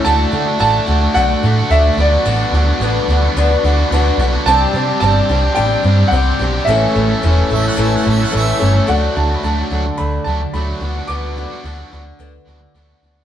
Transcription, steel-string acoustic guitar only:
X:1
M:4/4
L:1/8
Q:1/4=109
K:D
V:1 name="Steel-string acoustic guitar"
[D,A,DF] [A,DF] [D,A,DF] [A,DF] [D,A,DF] [A,DF] [D,A,DF] [B,DF] | [D,B,DF] [B,DF] [D,B,DF] [B,DF] [D,B,DF] [B,DF] [D,B,DF] [B,DF] | [=C,G,=CDG] [CDG] [G,CDG] [CDG] [C,G,CDG] [CDG] [G,CDG] [CDG] | [A,,E,A,CA] [A,CA] [E,A,CA] [A,CA] [A,,E,A,CA] [A,CA] [E,A,CA] [A,CA] |
[D,A,DF] [A,DF] [D,A,DF] [A,DF] [D,A,DF] [A,DF] [D,A,DF] [B,DF] | [D,B,DF] [B,DF] [D,B,DF] [B,DF] [D,B,DF] [B,DF] [D,B,DF] [B,DF] |]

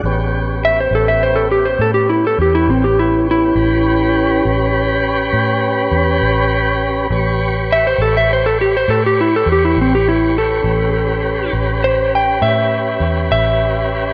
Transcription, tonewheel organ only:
X:1
M:12/8
L:1/8
Q:3/8=68
K:Amix
V:1 name="Tonewheel organ"
[B,CG]12 | [CGB]12 | [GBc]12 | [CGB]12 |]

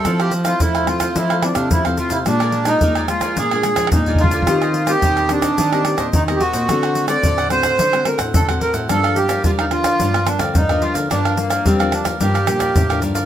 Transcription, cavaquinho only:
X:1
M:4/4
L:1/16
Q:1/4=109
K:Gm
V:1 name="Cavaquinho"
[=EAcf] [Acf]2 [Acf] [EAcf] [Acf]2 [Acf] [EAcf] [Acf] z [Acf]2 [Acf] [EAcf] [Acf] | [DBd_a] [Bda]2 [Bda] [DBda] [Bda]2 [Bda] [DBda] [Bda] z [Bda]2 [Bda] [DBda] [Bda] | [EGce] [Gce]2 [Gce] [EGce] [Gce]2 [Gce] [EGce] [Gce] z [Gce]2 [Gce] [EGce] [Gce] | [DAc^f] [Acf]2 [Acf] [DAcf] [Acf]2 [Acf] [DAcf] [Acf] z [Acf]2 [Acf] [DAcf] [Acf] |
[GBdf] [Bdf]2 [Bdf] [GBdf] [Bdf]2 [Bdf] [GBdf] [Bdf] z [Bdf]2 [Bdf] [GBdf] [Bdf] | [GBdf] [Bdf]2 [Bdf] [GBdf] [Bdf]2 [Bdf] [GBdf] [Bdf] z [Bdf]2 [Bdf] [GBdf] [Bdf] |]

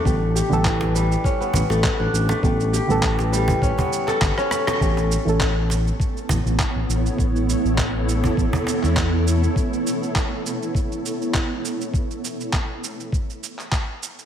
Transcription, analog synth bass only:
X:1
M:4/4
L:1/16
Q:"Swing 16ths" 1/4=101
K:Amix
V:1 name="Analog synth bass" clef=bass
A,,,2 z A,,,4 z3 A,,, A,,, z A,,, A,,, z | A,,,2 z A,,,4 z A,,, z3 G,,, z3 | A,,,2 z A,,,4 z3 A,,, A,,, z A,,, A,,, z | A,,,2 z A,,,4 z A,,, z2 E,,4 z |
z16 | z16 |]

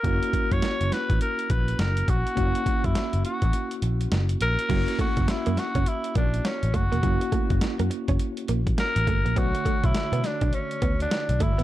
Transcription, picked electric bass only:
X:1
M:4/4
L:1/16
Q:"Swing 16ths" 1/4=103
K:F#phr
V:1 name="Picked electric bass" clef=bass
F,,, z2 F,, z F,,, z A,,, z2 ^A,,,2 F,,,2 A,,, z | F,,, z2 F,, z F,,, z A,,, z2 ^A,,,2 F,,,2 A,,, z | F,,, z2 F,,, z F,, z F,,, z2 ^A,,,2 z =A,,, F,,, E,,, | F,,, z2 F,,, z F,, z F,,, z2 ^A,,,2 z =A,,, G,,, ^A,,, |
B,,, z2 B,,, z B,, z B,,, z2 D,,2 z B,,, G,,, A,,, |]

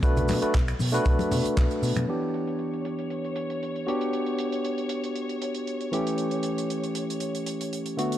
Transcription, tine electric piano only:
X:1
M:4/4
L:1/16
Q:1/4=117
K:Edor
V:1 name="Tine electric piano"
[A,DFB]3 [A,DFB] z3 [A,DFB]8- [A,DFB] | [E,B,DG]12- [E,B,DG]2 [B,DFG]2- | [B,DFG]12- [B,DFG]2 [E,A,CG]2- | [E,A,CG]12- [E,A,CG]2 [D,A,B,F]2 |]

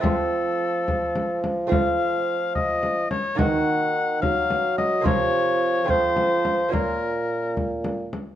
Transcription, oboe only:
X:1
M:6/8
L:1/8
Q:3/8=72
K:Fphr
V:1 name="Oboe"
=A4- A z | f3 e2 d | g3 f2 e | d3 c3 |
B3 z3 |]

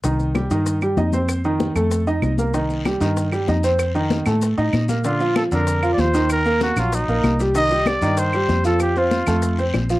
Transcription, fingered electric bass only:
X:1
M:4/4
L:1/8
Q:1/4=192
K:Cdor
V:1 name="Fingered electric bass" clef=bass
C,,3 G,,3 F,,2- | F,,3 F,,3 C,,2- | C,,3 G,,3 F,,2- | F,,3 A,,2 A,, B,,2- |
B,,3 F,,3 E,,2- | E,,3 B,,,2 B,,, C,,2- | C,,3 G,,3 F,,2- | F,,3 F,,3 B,,,2 |]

